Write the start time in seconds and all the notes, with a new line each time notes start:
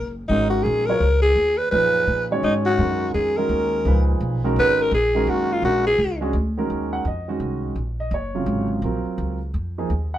Already playing: F#1 A#4
0.28 G#1 D#3 G#3 C#4 D#4 F#4 A#4
0.50 F#4
0.63 A#1 G#4
0.87 F#3 B3 F4 A#4 C#5
1.00 C#2
1.22 G#4
1.36 D#2
1.58 B4
1.71 F#2 A#2 F3 D#4 G#4 B4
2.07 A#2
2.31 D#3 G#3 C#4 F#4 C#5
2.43 G#2 D#4
2.66 F#4
2.78 F#2 D#3 G#3 C#4 F#4 A#4
3.14 F2 G#4
3.37 D#3 G#3 C#4 F#4 A#4
3.49 D#2
3.85 C#2 A#2 F3 D#4 G#4 B4
4.20 B1
4.44 D#3 G#3 C#4 F#4 A#4
4.56 G#1 B4
4.82 A#4
4.91 A#1 G#4
5.15 D#3 G#3 C#4 F#4 A#4
5.27 F#1 F#4
5.53 F4
5.62 A#1 G#3 C#4 D4 F#4 A#4
5.87 G#4
5.98 C#2
6.21 G#3 C#4 D4 F#4 G#4
6.33 D2
6.57 D#3 G#3 C#4 F#4 A#4
6.70 D#2
6.93 F#5
7.05 F2 D#5
7.28 D#3 G#3 C#4 F#4
7.40 C2
7.75 A#1
8.00 D#5
8.11 F#1 C#5
8.35 C3 C#3 F#3 F4
8.46 G#1
8.82 A#1 F#3 C4 F4 A#4
9.05 muted upright bass stroke
9.18 C#2
9.54 F2
9.78 F3 A#3 D#4 G#4
9.90 D#2
10.14 F#5